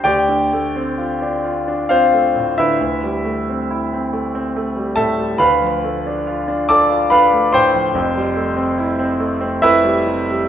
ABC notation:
X:1
M:3/4
L:1/16
Q:1/4=69
K:Ddor
V:1 name="Grand piano"
[Gdg]8 [Fcf]3 [EBe]- | [EBe]6 z4 [Aea]2 | [Bfb]6 [dad']2 [Bfb]2 [cgc']2- | [cgc']8 [EBe]4 |]
V:2 name="Grand piano"
D,, D, A, C F D F D C A, A,, D, | D,, G, A, C E C A, C A, G, A,, G, | D,, F, A, D F D A F D A, A,, F, | [F,,,F,,] G, A, C E C A, C A, G, C, G, |]